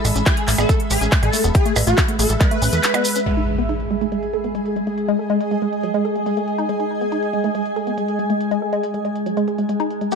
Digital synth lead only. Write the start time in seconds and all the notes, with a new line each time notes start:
0.26 G#4
0.58 A4
0.91 G#4
1.23 A4
1.55 G#4
1.87 F#4
2.19 A4
2.41 B4
10.12 G#4